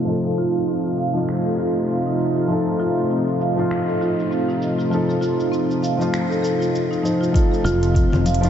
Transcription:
0.00 7.31 C3 medium
0.00 0.05 F3 medium
0.00 7.31 F3 medium
0.00 7.31 A3 medium
0.00 0.07 D#4 medium
0.00 7.31 D#4 medium
0.00 1.18 F4 medium
0.00 7.31 F4 medium
0.05 1.10 F3 medium
0.05 1.11 D#4 medium
0.05 0.23 F4 medium
0.05 1.12 A4 medium
0.05 cabasa soft
0.25 0.37 A4 medium
0.25 cabasa soft
0.38 0.48 F4 medium
0.38 cabasa medium
0.56 cabasa soft
0.68 0.84 C4 medium
0.68 cabasa soft
0.86 cabasa soft
0.98 1.44 F5 medium
0.98 cabasa medium
1.13 2.46 F3 medium
1.13 2.47 D#4 medium
1.13 cabasa soft
1.18 2.48 F4 medium
1.29 finger snap medium
1.29 cabasa soft
1.45 1.58 A4 medium
1.45 cabasa soft
1.58 1.69 F4 medium
1.58 cabasa medium
1.77 cabasa soft
1.89 2.06 C4 medium
1.89 cabasa soft
2.06 2.35 D#4 medium
2.06 cabasa soft
2.20 cabasa medium
2.36 2.48 F4 medium
2.36 cabasa soft
2.47 3.53 F3 medium
2.47 3.54 D#4 medium
2.47 2.65 F4 medium
2.47 3.55 A4 medium
2.47 cabasa soft
2.66 2.79 A4 medium
2.66 cabasa soft
2.80 2.90 F4 loud
2.80 cabasa medium
2.98 cabasa soft
3.10 3.27 C4 medium
3.10 cabasa soft
3.28 cabasa soft
3.40 3.86 F5 medium
3.40 cabasa medium
3.55 4.88 F3 medium
3.55 4.89 D#4 medium
3.55 4.90 F4 loud
3.55 cabasa soft
3.71 finger snap medium
3.71 cabasa soft
3.88 4.00 A4 medium
3.88 cabasa soft
4.01 4.11 F4 medium
4.01 cabasa medium
4.20 cabasa soft
4.31 4.48 C4 medium
4.31 cabasa soft
4.49 4.77 D#4 medium
4.49 cabasa soft
4.62 cabasa medium
4.78 4.90 F4 medium
4.78 cabasa soft
4.90 5.95 F3 medium
4.90 5.96 D#4 medium
4.90 5.07 F4 medium
4.90 5.97 A4 medium
4.90 cabasa soft
5.09 5.22 A4 medium
5.09 cabasa soft
5.21 5.32 F4 medium
5.21 cabasa medium
5.40 cabasa soft
5.52 5.69 C4 medium
5.52 cabasa soft
5.71 cabasa soft
5.82 6.29 F5 medium
5.82 cabasa medium
5.98 7.00 F3 medium
5.98 7.02 D#4 medium
5.98 cabasa soft
6.02 7.02 F4 loud
6.14 finger snap medium
6.14 cabasa soft
6.30 6.41 A4 medium
6.30 cabasa soft
6.42 6.60 A4 medium
6.42 cabasa medium
6.60 6.73 F4 medium
6.60 cabasa soft
6.75 cabasa soft
6.91 7.02 D#4 medium
6.91 cabasa soft
7.03 7.30 F3 medium
7.03 7.20 D#4 medium
7.03 7.31 D#4 medium
7.03 7.32 C5 medium
7.03 cabasa medium
7.21 7.33 F4 medium
7.21 cabasa soft
7.32 8.50 C3 medium
7.32 8.37 F3 medium
7.32 8.50 F3 medium
7.32 8.50 A3 medium
7.32 8.38 D#4 medium
7.32 8.50 D#4 medium
7.32 7.50 F4 medium
7.32 8.50 F4 medium
7.32 kick loud
7.32 closed hi-hat medium
7.36 8.40 A4 medium
7.36 cabasa soft
7.51 7.64 A4 medium
7.51 cabasa soft
7.64 8.05 F1 loud
7.64 7.75 F4 loud
7.64 closed hi-hat soft
7.64 high conga medium
7.64 cabasa medium
7.83 closed hi-hat soft
7.83 cabasa soft
7.95 8.11 C4 medium
7.95 kick loud
7.95 closed hi-hat medium
7.95 cabasa soft
8.12 8.50 F1 medium
8.12 low conga medium
8.12 cabasa soft
8.26 8.50 F5 medium
8.26 closed hi-hat soft
8.26 muted conga medium
8.26 high conga medium
8.26 cabasa medium
8.34 closed hi-hat medium
8.41 8.50 F3 loud
8.41 8.50 D#4 medium
8.41 8.50 F4 loud
8.41 closed hi-hat soft
8.41 cabasa soft

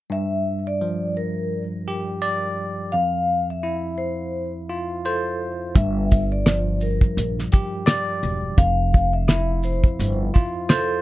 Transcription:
0.10 2.93 G2 medium
0.10 0.64 E5 loud
0.67 1.14 D5 medium
0.81 2.93 F3 medium
1.17 1.70 A#4 medium
1.88 2.93 G4 medium
2.22 2.93 D5 loud
2.92 5.76 F2 medium
2.92 3.46 F5 loud
3.50 3.96 E5 medium
3.63 5.75 E4 medium
3.98 4.51 C5 medium
4.69 5.75 F4 medium
5.05 5.37 A4 medium
5.05 5.76 C5 loud
5.75 6.99 G1 loud
5.75 8.58 G2 loud
5.75 6.29 E5 loud
5.75 kick loud
5.75 closed hi-hat medium
6.12 kick medium
6.12 closed hi-hat medium
6.12 shaker medium
6.32 6.78 D5 medium
6.46 8.58 F3 medium
6.46 cross-stick medium
6.46 snare loud
6.46 closed hi-hat medium
6.81 7.35 A#4 medium
6.81 shaker medium
7.01 kick loud
7.17 7.46 A#1 medium
7.17 closed hi-hat loud
7.39 snare soft
7.52 8.58 G4 medium
7.52 kick loud
7.52 closed hi-hat medium
7.52 shaker medium
7.86 8.57 D5 loud
7.86 cross-stick loud
7.86 snare loud
7.86 closed hi-hat medium
8.23 8.52 E1 medium
8.23 shaker medium
8.58 9.81 F1 loud
8.58 11.02 F2 medium
8.58 9.11 F5 loud
8.58 kick loud
8.58 closed hi-hat medium
8.94 kick loud
8.94 shaker medium
9.13 9.60 E5 medium
9.28 11.02 E4 medium
9.28 cross-stick medium
9.28 snare loud
9.28 closed hi-hat medium
9.63 10.17 C5 medium
9.63 shaker medium
9.84 kick loud
9.99 10.28 G1 loud
9.99 closed hi-hat loud
10.34 11.02 F4 medium
10.34 kick loud
10.34 shaker medium
10.69 11.01 A4 medium
10.69 11.02 C5 loud
10.69 cross-stick loud
10.69 snare loud
10.69 closed hi-hat medium

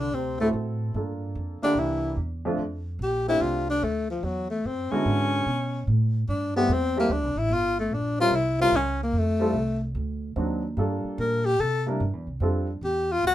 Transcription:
0.00 0.11 C2 medium
0.00 0.15 D3 medium
0.00 0.16 D4 medium
0.11 0.52 D2 medium
0.11 0.40 C3 medium
0.11 0.40 C4 medium
0.39 0.53 A2 medium
0.39 0.49 A3 medium
0.39 0.92 C4 medium
0.39 0.92 E4 medium
0.39 0.92 F#4 medium
0.39 0.93 A4 medium
0.53 0.93 A2 medium
0.94 1.34 G2 medium
0.94 1.57 A#3 medium
0.94 1.58 D4 soft
0.94 1.58 F4 soft
0.94 1.58 A4 medium
1.35 1.61 F2 medium
1.62 1.80 D3 medium
1.62 2.15 A#3 medium
1.62 2.15 D4 medium
1.62 1.80 D4 medium
1.62 2.16 E4 medium
1.62 2.16 G4 medium
1.62 muted upright bass stroke soft
1.75 2.16 C2 medium
1.75 2.19 E3 medium
1.75 2.19 E4 medium
2.16 2.57 E2 medium
2.45 2.58 F2 medium
2.45 2.58 A3 medium
2.45 2.58 C4 medium
2.45 2.58 D4 medium
2.45 2.59 F4 medium
2.57 2.98 F2 medium
2.99 3.39 A#1 medium
3.03 3.27 G4 medium
3.28 3.79 A3 medium
3.28 3.80 C4 medium
3.28 3.80 D4 medium
3.28 3.43 E4 loud
3.28 3.80 F4 medium
3.28 3.80 G4 medium
3.40 3.80 C2 medium
3.40 3.68 F4 medium
3.70 3.85 D4 medium
3.82 4.22 D2 medium
3.82 4.10 A3 medium
4.11 4.26 F3 medium
4.23 4.63 E2 medium
4.23 4.50 F#3 medium
4.51 4.68 A3 medium
4.64 4.89 F#2 medium
4.64 4.93 C4 medium
4.91 5.44 D3 medium
4.91 5.43 G#3 medium
4.91 5.43 B3 medium
4.91 5.87 C#4 medium
4.91 5.44 E4 medium
4.91 5.44 F#4 medium
4.91 muted upright bass stroke soft
5.05 5.45 G#2 medium
5.46 5.86 B2 medium
5.87 6.27 A2 medium
6.28 6.68 G2 medium
6.28 6.54 D4 medium
6.56 6.68 G3 medium
6.56 6.68 A3 medium
6.56 6.74 B3 loud
6.56 6.68 C4 medium
6.56 6.69 E4 medium
6.56 6.69 G4 medium
6.69 7.08 E2 medium
6.73 6.98 C4 medium
6.96 7.09 G3 medium
6.96 7.09 A3 medium
6.96 7.14 A#3 medium
6.96 7.09 C4 medium
6.96 7.09 E4 medium
6.96 7.10 G4 medium
7.09 7.23 D2 medium
7.09 7.40 D4 medium
7.23 7.35 C2 medium
7.35 7.49 A1 medium
7.35 7.55 E4 medium
7.50 7.89 G1 medium
7.50 7.79 F4 medium
7.80 7.96 A3 medium
7.90 8.30 A#1 medium
7.94 8.20 D4 medium
8.19 8.32 G3 medium
8.19 8.32 C4 medium
8.19 8.32 C#4 medium
8.19 8.32 E4 medium
8.19 8.37 F4 loud
8.19 8.32 A#4 medium
8.31 8.71 C2 medium
8.36 8.61 E4 medium
8.60 8.72 G3 medium
8.60 8.72 C4 medium
8.60 8.73 C#4 medium
8.60 8.73 E4 medium
8.60 8.78 F4 loud
8.60 8.73 A#4 medium
8.72 9.12 C#2 medium
8.76 9.02 C#4 medium
9.03 9.20 A#3 medium
9.13 9.53 F2 medium
9.18 9.84 A3 medium
9.40 9.53 G3 medium
9.40 9.53 C4 medium
9.40 9.54 E4 medium
9.40 9.54 F4 medium
9.40 9.54 A4 medium
9.53 9.94 C2 medium
9.95 10.35 D2 medium
10.36 10.76 D#2 medium
10.36 10.61 F#3 medium
10.36 10.61 C4 medium
10.36 10.61 D4 medium
10.36 10.62 D#4 soft
10.36 10.62 F#4 medium
10.77 11.02 G2 medium
10.77 11.40 G3 medium
10.77 11.40 A#3 medium
10.77 11.40 D4 soft
10.77 11.41 F4 medium
10.77 11.41 A4 medium
11.04 muted upright bass stroke soft
11.18 11.58 A#2 medium
11.18 11.47 A#4 medium
11.45 11.62 G4 loud
11.59 11.99 C3 medium
11.59 11.87 A4 medium
11.87 11.99 G3 medium
11.87 11.99 A#3 medium
11.87 11.99 D4 medium
11.87 12.00 E4 medium
11.87 12.00 A#4 medium
12.00 12.13 G2 medium
12.13 12.26 E2 medium
12.27 12.40 C2 medium
12.40 12.81 F2 medium
12.40 12.66 G3 medium
12.40 12.66 C4 medium
12.40 12.66 D4 medium
12.40 12.66 F4 medium
12.40 12.67 A4 medium
12.81 13.22 E2 medium
12.81 13.14 G4 medium
13.12 13.25 F4 loud
13.23 13.35 D2 medium
13.23 13.35 F#4 medium

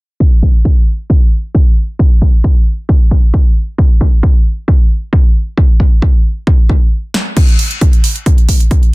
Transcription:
0.20 kick loud
0.43 kick medium
0.65 kick loud
1.10 kick loud
1.55 kick loud
1.99 kick loud
2.22 kick medium
2.44 kick loud
2.89 kick loud
3.11 kick medium
3.34 kick loud
3.78 kick loud
4.01 kick medium
4.23 kick loud
4.68 kick loud
5.13 kick loud
5.58 kick loud
5.80 kick medium
6.02 kick loud
6.47 kick loud
6.69 kick medium
7.14 snare medium
7.37 kick loud
7.37 closed hi-hat loud
7.37 crash medium
7.48 closed hi-hat medium
7.59 open hi-hat loud
7.71 closed hi-hat medium
7.81 kick loud
7.81 closed hi-hat loud
7.93 closed hi-hat medium
8.04 open hi-hat loud
8.16 closed hi-hat medium
8.26 kick loud
8.26 closed hi-hat loud
8.38 closed hi-hat medium
8.49 kick medium
8.49 open hi-hat loud
8.60 closed hi-hat medium
8.71 kick loud
8.71 closed hi-hat loud
8.83 closed hi-hat medium

